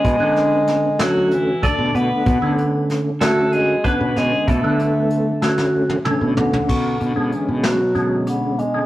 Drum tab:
CC |--------------|--------------|--------------|x-------------|
HH |x-x-x-x-x-x-x-|x-x-x-x-x-x-x-|x-x-x---------|--x-x-x-x-x-x-|
SD |--o-o-o-------|----o-o-----o-|------oo------|------o-------|
T1 |--------------|--------------|---------o----|--------------|
T2 |--------------|--------------|----------o---|--------------|
FT |--------------|--------------|------------oo|--------------|
BD |o---------o---|o---------o---|o-------------|o-------------|